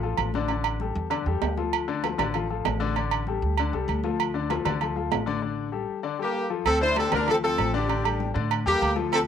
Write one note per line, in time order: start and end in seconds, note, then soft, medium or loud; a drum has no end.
0.00 0.15 A1 medium
0.00 0.28 F3 medium
0.00 0.28 F4 medium
0.00 0.28 A4 medium
0.00 high conga soft
0.17 0.90 A1 loud
0.17 high conga medium
0.17 low agogo loud
0.34 0.47 D3 medium
0.34 0.47 D4 loud
0.34 0.47 D5 medium
0.34 high conga medium
0.48 0.75 D3 medium
0.48 0.75 D4 medium
0.48 0.75 D5 medium
0.48 high conga soft
0.48 low agogo medium
0.64 high conga soft
0.64 low agogo loud
0.80 1.06 G3 medium
0.80 1.06 G4 medium
0.80 1.06 A4 medium
0.80 high conga medium
0.95 1.24 E2 medium
0.95 high conga soft
1.10 1.23 D3 medium
1.10 1.23 D4 medium
1.10 1.23 D5 medium
1.10 high conga soft
1.10 low agogo loud
1.26 1.40 E2 medium
1.26 1.51 G3 medium
1.26 1.52 G4 medium
1.26 1.52 A4 medium
1.26 high conga soft
1.42 2.13 D2 medium
1.42 low timbale medium
1.42 low agogo medium
1.57 1.82 F3 medium
1.57 1.83 F4 medium
1.57 1.83 A4 medium
1.57 high conga medium
1.73 high conga soft
1.73 low agogo loud
1.88 2.00 D3 loud
1.88 2.00 D4 medium
1.88 2.01 D5 medium
1.88 high conga soft
2.04 2.16 F3 medium
2.04 2.16 F4 medium
2.04 2.16 A4 medium
2.04 high conga loud
2.04 low agogo medium
2.18 2.62 A1 medium
2.18 2.31 D3 medium
2.18 2.31 D4 medium
2.18 2.32 D5 medium
2.18 high conga loud
2.18 low conga medium
2.18 low agogo loud
2.34 2.46 F3 medium
2.34 2.47 F4 medium
2.34 2.47 A4 medium
2.34 high conga soft
2.34 low conga medium
2.34 low agogo medium
2.50 2.75 F3 medium
2.50 2.75 F4 medium
2.50 2.75 A4 medium
2.50 high conga soft
2.65 3.37 A1 medium
2.65 high conga medium
2.65 low timbale medium
2.65 low agogo loud
2.80 2.93 D3 loud
2.80 2.93 D4 loud
2.80 2.93 D5 loud
2.80 high conga medium
2.96 3.21 D3 medium
2.96 3.22 D4 medium
2.96 3.22 D5 medium
2.96 high conga soft
2.96 low agogo medium
3.11 high conga soft
3.11 low agogo loud
3.27 3.52 G3 medium
3.27 3.53 G4 medium
3.27 3.53 A4 medium
3.27 high conga medium
3.42 3.71 D2 medium
3.42 high conga soft
3.57 3.71 D3 medium
3.57 3.71 D4 medium
3.57 3.71 D5 medium
3.57 high conga soft
3.57 low agogo loud
3.73 3.87 C2 medium
3.73 3.98 G3 medium
3.73 3.99 G4 medium
3.73 3.99 A4 medium
3.73 high conga soft
3.88 4.60 D2 loud
3.88 high conga soft
3.88 low agogo medium
4.04 4.29 F3 medium
4.04 4.29 F4 medium
4.04 4.29 A4 medium
4.04 high conga medium
4.19 high conga soft
4.19 low agogo loud
4.34 4.47 D3 medium
4.34 4.47 D4 medium
4.34 4.48 D5 medium
4.34 high conga soft
4.50 4.62 F3 medium
4.50 4.63 F4 medium
4.50 4.63 A4 medium
4.50 high conga loud
4.50 low agogo medium
4.65 5.08 D2 medium
4.65 4.78 D3 medium
4.65 4.78 D4 medium
4.65 4.78 D5 medium
4.65 high conga medium
4.65 low conga medium
4.65 low agogo loud
4.81 4.94 F3 medium
4.81 4.94 F4 medium
4.81 4.94 A4 medium
4.81 high conga soft
4.81 low agogo medium
4.96 5.21 F3 medium
4.96 5.21 F4 medium
4.96 5.22 A4 medium
4.96 high conga soft
5.11 5.83 A1 medium
5.11 high conga medium
5.11 low timbale medium
5.11 low agogo loud
5.26 5.39 D3 loud
5.26 5.39 D4 medium
5.26 5.40 D5 loud
5.26 high conga medium
5.42 5.67 D3 medium
5.42 5.67 D4 medium
5.42 5.68 D5 medium
5.72 5.98 G3 medium
5.72 5.98 G4 medium
5.72 5.98 A4 medium
6.03 6.16 D3 medium
6.03 6.16 D4 medium
6.03 6.17 D5 medium
6.19 6.44 G3 medium
6.19 6.50 A#3 medium
6.19 6.44 G4 medium
6.19 6.49 G4 medium
6.19 6.45 A4 medium
6.50 6.63 F3 medium
6.50 6.63 F4 medium
6.50 6.63 A4 medium
6.66 7.09 D2 loud
6.66 6.81 C4 medium
6.66 6.80 A4 loud
6.66 high conga soft
6.66 low agogo loud
6.81 7.06 D3 medium
6.81 7.06 D4 loud
6.81 6.96 E4 medium
6.81 6.96 C5 loud
6.81 7.06 D5 medium
6.81 high conga soft
6.96 7.12 C4 medium
6.96 7.12 A4 loud
6.96 high conga loud
6.96 low agogo medium
7.12 7.55 D2 medium
7.12 7.25 D3 medium
7.12 7.25 D4 medium
7.12 7.28 D4 medium
7.12 7.27 A#4 medium
7.12 7.25 D5 medium
7.12 high conga loud
7.12 low conga medium
7.12 low agogo loud
7.27 7.40 F3 medium
7.27 7.37 C4 medium
7.27 7.41 F4 medium
7.27 7.41 A4 medium
7.27 7.36 A4 loud
7.27 high conga soft
7.27 low conga medium
7.27 low agogo medium
7.43 7.68 F3 medium
7.43 7.72 C4 medium
7.43 7.69 F4 medium
7.43 7.72 A4 loud
7.43 7.69 A4 medium
7.43 high conga soft
7.58 8.30 A1 loud
7.58 high conga medium
7.58 low agogo medium
7.73 7.86 D3 loud
7.73 7.86 D4 loud
7.73 8.32 D4 medium
7.73 8.32 G4 medium
7.73 7.87 D5 loud
7.73 high conga medium
7.88 8.01 D3 medium
7.88 8.01 D4 medium
7.88 8.02 D5 medium
7.88 high conga soft
7.88 low agogo medium
8.04 8.29 G3 medium
8.04 8.29 G4 medium
8.04 8.30 A4 medium
8.04 high conga soft
8.04 low agogo loud
8.20 high conga medium
8.34 8.64 A2 loud
8.34 8.60 D3 medium
8.34 8.60 D4 medium
8.34 8.60 D5 medium
8.50 high conga soft
8.50 low agogo loud
8.65 8.80 E2 medium
8.65 8.91 G3 medium
8.65 8.95 A#3 medium
8.65 8.91 G4 medium
8.65 8.95 G4 loud
8.65 8.91 A4 medium
8.65 high conga soft
8.81 9.27 D2 loud
8.81 high conga soft
8.81 low agogo medium
8.96 9.22 F3 medium
8.96 9.22 F4 medium
8.96 9.22 A4 loud
8.96 high conga medium
9.12 9.20 C4 medium
9.12 9.20 A4 loud
9.12 high conga soft
9.12 low agogo loud